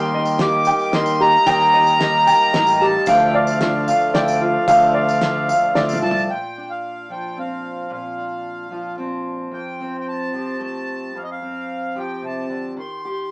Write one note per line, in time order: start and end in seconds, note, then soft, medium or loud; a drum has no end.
0.00 0.70 D#2 loud
0.00 1.43 D#2 medium
0.00 0.39 D#3 medium
0.00 1.43 D#3 medium
0.00 3.05 D#3 medium
0.00 0.36 G3 medium
0.00 0.37 A#3 medium
0.00 0.40 A#3 medium
0.00 3.05 A#3 medium
0.00 0.37 D#4 medium
0.00 0.41 D#4 medium
0.00 0.41 G4 medium
0.00 3.04 G4 medium
0.00 0.37 A#4 medium
0.00 0.37 D#5 medium
0.00 0.65 G5 loud
0.00 0.42 C6 medium
0.14 0.92 D#5 medium
0.25 tambourine medium
0.39 0.92 D#3 medium
0.39 0.89 G3 medium
0.39 0.90 A#3 medium
0.39 0.93 A#3 medium
0.39 0.90 D#4 medium
0.39 0.93 D#4 medium
0.39 1.19 G4 medium
0.39 0.94 G4 medium
0.39 0.90 A#4 medium
0.39 0.90 D#5 medium
0.39 0.96 D6 loud
0.39 snare medium
0.39 closed hi-hat medium
0.65 1.45 G5 medium
0.65 tambourine medium
0.79 tambourine soft
0.92 1.36 D#2 loud
0.92 1.20 D#3 medium
0.92 1.43 G3 medium
0.92 1.43 A#3 medium
0.92 1.21 A#3 medium
0.92 1.43 D#4 medium
0.92 1.21 D#4 medium
0.92 1.20 G4 medium
0.92 1.43 A#4 medium
0.92 1.43 D#5 medium
0.92 1.72 D#5 medium
0.92 1.22 C6 loud
0.92 snare medium
0.92 closed hi-hat medium
1.06 tambourine medium
1.20 1.47 A#3 soft
1.20 1.47 D#4 soft
1.20 2.27 G4 medium
1.20 1.47 G4 medium
1.20 2.86 A#5 loud
1.46 3.03 D#2 medium
1.46 2.30 D#2 loud
1.46 3.03 D#3 medium
1.46 2.00 D#3 medium
1.46 1.96 G3 medium
1.46 1.96 A#3 medium
1.46 2.01 A#3 medium
1.46 1.97 D#4 medium
1.46 2.01 D#4 medium
1.46 2.01 G4 medium
1.46 1.97 A#4 medium
1.46 1.97 D#5 medium
1.46 2.25 G5 loud
1.46 kick loud
1.46 closed hi-hat medium
1.46 tambourine medium
1.60 tambourine soft
1.74 2.52 D#5 medium
1.87 tambourine medium
1.99 2.53 D#3 medium
1.99 2.50 G3 medium
1.99 2.50 A#3 medium
1.99 2.54 A#3 medium
1.99 2.50 D#4 medium
1.99 2.50 A#4 medium
1.99 2.50 D#5 medium
1.99 snare medium
1.99 closed hi-hat medium
2.03 2.55 D#4 medium
2.03 2.55 G4 medium
2.27 3.07 G5 medium
2.27 tambourine loud
2.40 tambourine soft
2.54 2.96 A1 medium
2.54 2.81 D#3 medium
2.54 3.04 G3 medium
2.54 3.04 A#3 medium
2.54 2.81 A#3 medium
2.54 3.04 D#4 medium
2.54 2.81 D#4 medium
2.54 2.79 G4 medium
2.54 3.04 A#4 medium
2.54 3.07 D#5 medium
2.54 3.05 D#5 medium
2.54 snare medium
2.54 closed hi-hat medium
2.67 tambourine medium
2.80 3.09 A#3 soft
2.80 3.08 D#4 medium
2.80 3.07 G4 medium
2.80 3.08 G4 medium
2.80 3.08 A5 medium
3.06 3.91 D2 loud
3.06 4.65 D2 medium
3.06 6.26 D3 medium
3.06 4.65 D3 medium
3.06 4.67 D3 medium
3.06 3.58 F3 medium
3.06 3.62 F3 medium
3.06 6.26 A3 medium
3.06 3.58 A3 medium
3.06 3.61 A3 medium
3.06 3.58 D4 medium
3.06 3.63 D4 medium
3.06 6.26 F4 medium
3.06 3.63 F4 medium
3.06 3.58 A4 medium
3.06 3.58 D5 medium
3.06 3.86 F5 loud
3.06 3.35 G5 medium
3.06 kick loud
3.06 closed hi-hat medium
3.06 tambourine loud
3.20 tambourine soft
3.35 4.12 D5 medium
3.35 4.17 F5 medium
3.47 tambourine medium
3.61 3.88 F3 medium
3.61 4.12 F3 medium
3.61 4.12 A3 medium
3.61 3.88 A3 medium
3.61 4.12 D4 medium
3.61 3.87 D4 medium
3.61 4.40 F4 medium
3.61 3.87 F4 medium
3.61 4.12 A4 medium
3.61 4.12 D5 medium
3.61 snare medium
3.61 closed hi-hat medium
3.88 4.15 A3 soft
3.88 4.15 D4 soft
3.88 4.15 F4 soft
3.88 4.66 F5 medium
3.88 tambourine loud
4.00 tambourine soft
4.14 4.56 D2 medium
4.14 4.68 F3 soft
4.14 4.65 F3 medium
4.14 4.66 A3 medium
4.14 4.67 A3 medium
4.14 4.69 D4 medium
4.14 4.66 D4 medium
4.14 4.68 F4 medium
4.14 4.66 A4 medium
4.14 4.93 D5 medium
4.14 4.66 D5 medium
4.14 4.42 G5 medium
4.14 snare medium
4.14 closed hi-hat medium
4.28 tambourine loud
4.41 5.49 F4 medium
4.41 4.67 F5 medium
4.68 5.51 D2 loud
4.68 6.26 D2 medium
4.68 5.22 D3 medium
4.68 6.26 D3 medium
4.68 5.20 F3 medium
4.68 5.19 F3 medium
4.68 5.21 A3 medium
4.68 5.19 A3 medium
4.68 5.21 D4 medium
4.68 5.19 D4 medium
4.68 5.22 F4 medium
4.68 5.19 A4 medium
4.68 5.19 D5 medium
4.68 5.47 F5 loud
4.68 5.99 F5 medium
4.68 kick loud
4.68 closed hi-hat medium
4.68 tambourine loud
4.82 tambourine soft
4.94 5.74 D5 medium
5.09 tambourine medium
5.21 5.74 F3 medium
5.21 5.73 F3 medium
5.21 5.75 A3 medium
5.21 5.73 A3 medium
5.21 5.75 D4 medium
5.21 5.73 D4 medium
5.21 5.76 F4 medium
5.21 5.73 A4 medium
5.21 5.73 D5 medium
5.21 snare medium
5.21 closed hi-hat medium
5.21 tambourine soft
5.48 6.29 F5 medium
5.48 tambourine loud
5.75 6.00 D2 medium
5.75 6.29 F3 medium
5.75 6.26 F3 medium
5.75 6.26 A3 medium
5.75 6.30 A3 medium
5.75 6.30 D4 medium
5.75 6.26 D4 medium
5.75 6.30 F4 medium
5.75 6.26 A4 medium
5.75 6.29 D5 medium
5.75 6.26 D5 medium
5.75 snare medium
5.75 tambourine soft
5.89 tambourine medium
5.93 mid tom medium
6.02 6.27 C2 medium
6.02 6.29 F4 medium
6.02 6.30 A5 loud
6.11 floor tom medium
6.17 tambourine soft
6.30 7.89 A#2 soft
6.30 6.71 G5 medium
6.58 7.89 D4 soft
6.70 7.12 F5 medium
7.09 8.70 F3 soft
7.09 8.71 F4 soft
7.09 7.39 G5 medium
7.37 7.93 C4 soft
7.37 7.92 F5 medium
7.90 9.52 A#2 soft
7.90 8.96 F5 soft
8.18 9.50 D4 soft
8.70 10.33 F3 soft
8.70 10.34 F4 soft
8.98 9.80 C4 soft
9.51 11.14 F2 soft
9.51 9.97 G5 medium
9.80 11.41 C4 soft
10.00 10.07 G5 soft
10.08 10.62 A5 medium
10.33 11.11 F3 soft
10.33 11.18 G4 soft
10.60 11.11 A3 soft
10.60 11.18 A5 medium
11.15 12.77 F2 soft
11.15 11.23 F5 medium
11.24 11.30 D#5 soft
11.32 11.99 F5 medium
11.42 12.77 C4 soft
11.95 12.73 F3 soft
11.95 13.05 G4 soft
11.95 12.25 G5 medium
12.22 12.49 C3 soft
12.22 12.74 A5 medium
12.49 12.77 D3 soft
12.77 13.31 D#3 soft
12.77 13.31 C6 medium
13.05 13.31 G4 soft